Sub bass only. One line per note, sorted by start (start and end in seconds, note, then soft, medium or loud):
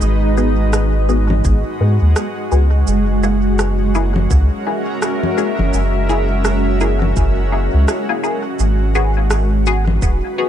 0.01 1.42 G#1 loud
1.45 1.63 G#1 medium
1.80 1.99 G#2 medium
2.02 2.14 D#2 medium
2.52 2.84 C#2 medium
2.87 4.28 F#1 loud
4.31 4.49 C#2 medium
5.59 5.72 F#1 loud
5.74 7.14 F#1 loud
7.16 7.69 F#1 medium
7.74 7.86 C#2 medium
8.60 9.99 G#1 loud
10.02 10.21 D#1 medium